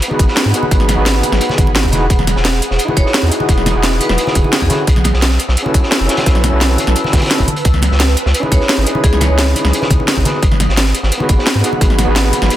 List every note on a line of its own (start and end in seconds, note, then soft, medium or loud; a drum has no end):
0.00 4.66 G#4 medium
0.00 4.66 F#5 medium
0.00 1.90 B5 medium
0.00 closed hi-hat medium
0.08 0.50 B3 medium
0.08 0.51 D#4 medium
0.08 0.52 F#4 medium
0.08 muted conga medium
0.12 0.53 G#4 medium
0.12 0.53 B4 medium
0.19 0.27 G#1 medium
0.19 kick loud
0.19 closed hi-hat medium
0.28 snare soft
0.36 snare loud
0.36 closed hi-hat medium
0.45 0.53 G#2 medium
0.51 0.93 B3 medium
0.51 0.95 D#4 medium
0.51 0.95 F#4 medium
0.51 closed hi-hat medium
0.56 0.96 G#4 medium
0.56 0.97 B4 medium
0.63 muted conga medium
0.71 0.96 G#1 loud
0.71 kick loud
0.71 closed hi-hat medium
0.80 snare soft
0.88 snare medium
0.88 closed hi-hat medium
0.88 muted conga medium
0.95 1.22 G#1 medium
0.95 1.89 B3 medium
0.95 1.90 D#4 medium
0.95 1.91 F#4 medium
0.99 1.92 G#4 medium
0.99 1.92 B4 medium
1.06 snare loud
1.06 closed hi-hat medium
1.23 closed hi-hat medium
1.23 muted conga soft
1.32 1.40 G#1 loud
1.32 snare medium
1.41 closed hi-hat medium
1.49 snare medium
1.49 muted conga medium
1.58 1.85 G#1 medium
1.58 kick loud
1.58 closed hi-hat medium
1.58 high conga medium
1.67 muted conga medium
1.75 snare loud
1.75 closed hi-hat medium
1.84 2.09 E1 loud
1.84 kick medium
1.91 2.05 D#4 medium
1.91 2.05 E4 medium
1.91 2.05 F#4 medium
1.91 2.06 G#4 medium
1.91 2.06 B4 loud
1.91 4.68 D#6 medium
1.91 snare soft
1.91 closed hi-hat medium
1.91 high conga medium
2.10 2.35 E1 loud
2.10 kick loud
2.10 closed hi-hat medium
2.19 snare soft
2.19 high conga medium
2.27 snare medium
2.27 closed hi-hat medium
2.27 muted conga medium
2.36 2.61 E1 loud
2.36 snare medium
2.45 snare loud
2.45 closed hi-hat medium
2.53 snare medium
2.62 closed hi-hat medium
2.71 2.79 E1 loud
2.71 snare medium
2.79 closed hi-hat medium
2.85 3.27 D#4 medium
2.85 3.29 E4 medium
2.85 3.29 F#4 medium
2.85 muted conga medium
2.90 3.30 G#4 medium
2.90 3.31 B4 medium
2.97 3.05 E1 medium
2.97 3.18 C#5 medium
2.97 kick loud
2.97 closed hi-hat medium
3.06 snare soft
3.14 snare loud
3.14 closed hi-hat medium
3.23 3.31 E2 medium
3.28 3.71 D#4 medium
3.28 3.72 E4 medium
3.28 3.73 F#4 medium
3.28 closed hi-hat medium
3.33 3.74 G#4 medium
3.33 3.74 B4 medium
3.40 muted conga medium
3.49 3.74 E1 loud
3.49 kick loud
3.49 closed hi-hat medium
3.58 snare soft
3.66 snare medium
3.66 closed hi-hat medium
3.66 muted conga medium
3.72 3.99 E1 medium
3.72 4.67 D#4 medium
3.72 4.67 E4 medium
3.72 4.68 F#4 medium
3.76 4.69 G#4 medium
3.76 4.70 B4 loud
3.83 snare loud
3.83 closed hi-hat medium
4.00 4.22 B4 medium
4.00 closed hi-hat medium
4.00 muted conga soft
4.09 4.17 E1 loud
4.09 snare medium
4.18 closed hi-hat medium
4.27 snare medium
4.27 muted conga medium
4.35 4.43 E1 medium
4.35 kick loud
4.35 closed hi-hat medium
4.35 high conga medium
4.44 muted conga medium
4.53 snare loud
4.53 closed hi-hat medium
4.61 4.69 E2 medium
4.61 4.74 G#4 medium
4.61 kick medium
4.69 4.82 C#4 medium
4.69 4.82 E4 medium
4.69 4.83 F#4 medium
4.69 4.83 A4 medium
4.69 10.21 B4 medium
4.69 4.83 B4 medium
4.69 7.62 A5 medium
4.69 7.62 E6 medium
4.69 snare soft
4.69 closed hi-hat medium
4.69 high conga medium
4.87 5.12 B1 loud
4.87 kick loud
4.87 closed hi-hat medium
4.96 snare soft
4.96 high conga medium
5.04 snare medium
5.04 closed hi-hat medium
5.04 closed hi-hat loud
5.04 muted conga medium
5.13 5.38 B1 medium
5.13 snare soft
5.22 snare loud
5.22 closed hi-hat medium
5.30 snare medium
5.39 closed hi-hat medium
5.48 5.56 B1 loud
5.48 snare medium
5.57 closed hi-hat medium
5.63 6.05 C#4 medium
5.63 6.06 E4 medium
5.63 6.07 F#4 medium
5.63 muted conga medium
5.67 6.08 A4 medium
5.67 6.08 B4 medium
5.74 5.82 B1 medium
5.74 kick loud
5.74 closed hi-hat medium
5.74 closed hi-hat loud
5.83 snare soft
5.91 snare loud
5.91 closed hi-hat medium
6.00 6.08 F#1 medium
6.06 6.48 C#4 medium
6.06 6.50 E4 medium
6.06 6.50 F#4 medium
6.06 snare medium
6.06 closed hi-hat loud
6.06 closed hi-hat medium
6.10 6.51 A4 medium
6.10 6.52 B4 medium
6.17 snare loud
6.17 closed hi-hat medium
6.17 muted conga soft
6.26 6.51 B1 loud
6.26 kick loud
6.26 snare loud
6.26 closed hi-hat medium
6.35 snare soft
6.44 snare medium
6.44 closed hi-hat loud
6.44 closed hi-hat medium
6.44 muted conga medium
6.50 6.77 B1 medium
6.50 7.36 C#4 medium
6.50 7.37 E4 medium
6.50 7.37 F#4 medium
6.54 7.38 A4 medium
6.54 7.39 B4 loud
6.61 snare loud
6.61 closed hi-hat medium
6.78 closed hi-hat loud
6.78 closed hi-hat medium
6.78 muted conga soft
6.87 6.95 B1 medium
6.87 snare medium
6.96 closed hi-hat medium
7.04 snare soft
7.04 muted conga medium
7.13 7.21 B1 medium
7.13 kick loud
7.13 snare loud
7.13 closed hi-hat loud
7.13 closed hi-hat medium
7.13 high conga medium
7.18 snare medium
7.18 closed hi-hat medium
7.21 snare medium
7.21 closed hi-hat medium
7.21 muted conga medium
7.26 snare medium
7.26 closed hi-hat medium
7.31 snare loud
7.31 closed hi-hat medium
7.38 7.47 F#1 medium
7.38 7.46 C#4 medium
7.38 7.47 E4 medium
7.38 7.47 F#4 medium
7.38 7.47 A4 medium
7.38 7.48 B4 medium
7.38 kick medium
7.38 closed hi-hat medium
7.47 closed hi-hat loud
7.47 high conga medium
7.56 closed hi-hat medium
7.65 7.90 C#2 loud
7.65 10.23 D#6 medium
7.65 kick loud
7.65 closed hi-hat medium
7.73 snare soft
7.73 high conga medium
7.82 snare medium
7.82 closed hi-hat loud
7.82 closed hi-hat medium
7.82 muted conga medium
7.91 8.16 C#2 medium
7.91 snare soft
7.99 snare loud
7.99 closed hi-hat medium
8.09 snare soft
8.17 closed hi-hat medium
8.26 8.34 C#2 medium
8.26 snare medium
8.34 closed hi-hat medium
8.40 8.82 C#4 medium
8.40 8.84 D#4 medium
8.40 8.84 E4 medium
8.40 muted conga soft
8.44 8.85 G#4 medium
8.44 8.86 B4 medium
8.52 8.60 C#2 medium
8.52 8.73 C#5 medium
8.52 kick loud
8.52 closed hi-hat loud
8.52 closed hi-hat medium
8.61 snare soft
8.69 snare loud
8.69 closed hi-hat medium
8.78 8.85 G#1 medium
8.83 9.26 C#4 medium
8.83 9.27 D#4 medium
8.83 9.28 E4 medium
8.83 closed hi-hat loud
8.83 closed hi-hat medium
8.88 9.29 G#4 medium
8.88 9.29 B4 medium
8.95 muted conga medium
9.04 9.28 C#2 loud
9.04 9.19 G#4 medium
9.04 kick loud
9.04 closed hi-hat medium
9.13 snare soft
9.21 9.47 C#5 medium
9.21 snare medium
9.21 closed hi-hat medium
9.21 closed hi-hat loud
9.21 muted conga medium
9.27 9.54 C#2 medium
9.27 10.22 C#4 medium
9.27 10.22 D#4 medium
9.27 10.23 E4 medium
9.31 10.24 G#4 medium
9.31 10.25 B4 loud
9.38 snare loud
9.38 closed hi-hat medium
9.55 closed hi-hat loud
9.55 closed hi-hat medium
9.55 muted conga soft
9.64 9.72 C#2 medium
9.64 snare medium
9.73 closed hi-hat medium
9.82 snare medium
9.82 muted conga medium
9.90 9.98 C#2 medium
9.90 kick loud
9.90 closed hi-hat loud
9.90 closed hi-hat medium
9.90 high conga medium
10.00 muted conga medium
10.07 snare loud
10.07 closed hi-hat medium
10.17 10.24 G#1 medium
10.17 kick medium
10.24 10.37 B3 medium
10.24 10.37 D#4 medium
10.24 10.38 F#4 medium
10.24 12.57 G#4 medium
10.24 10.38 G#4 medium
10.24 10.39 B4 loud
10.24 12.57 F#5 medium
10.24 12.57 B5 medium
10.24 snare soft
10.24 closed hi-hat medium
10.24 high conga medium
10.43 10.67 G#1 loud
10.43 kick loud
10.43 closed hi-hat medium
10.51 snare soft
10.51 high conga medium
10.60 snare medium
10.60 closed hi-hat medium
10.60 muted conga medium
10.69 10.93 G#1 medium
10.69 snare medium
10.77 snare loud
10.77 closed hi-hat medium
10.86 snare medium
10.94 closed hi-hat medium
11.03 11.11 G#1 medium
11.03 snare medium
11.12 closed hi-hat medium
11.18 11.60 B3 medium
11.18 11.61 D#4 medium
11.18 11.62 F#4 medium
11.18 muted conga medium
11.22 11.63 G#4 medium
11.22 11.63 B4 medium
11.29 11.37 G#1 medium
11.29 kick loud
11.29 closed hi-hat medium
11.39 snare soft
11.46 snare loud
11.46 closed hi-hat loud
11.46 closed hi-hat medium
11.55 11.63 G#2 medium
11.61 12.03 B3 medium
11.61 12.05 D#4 medium
11.61 12.05 F#4 medium
11.61 closed hi-hat medium
11.66 12.06 G#4 medium
11.66 12.07 B4 medium
11.73 muted conga medium
11.81 12.06 G#1 loud
11.81 kick loud
11.81 closed hi-hat medium
11.90 snare soft
11.99 snare medium
11.99 closed hi-hat medium
11.99 muted conga medium
12.04 12.32 G#1 loud
12.04 12.57 B3 medium
12.04 12.57 D#4 medium
12.04 12.57 F#4 medium
12.09 12.57 G#4 medium
12.09 12.57 B4 medium
12.16 snare loud
12.16 closed hi-hat medium
12.33 closed hi-hat medium
12.33 muted conga soft
12.42 12.50 G#1 loud
12.42 snare medium
12.50 closed hi-hat medium